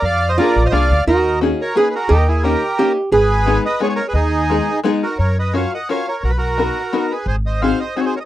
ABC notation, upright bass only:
X:1
M:3/4
L:1/8
Q:"Swing" 1/4=174
K:G#m
V:1 name="Upright bass" clef=bass
^E,,3 A,,, ^B,,, =D,, | D,,4 z2 | D,,4 z2 | G,,,4 z2 |
D,,4 z2 | [K:F#] F,,4 z2 | B,,,4 z2 | G,,,4 z2 |]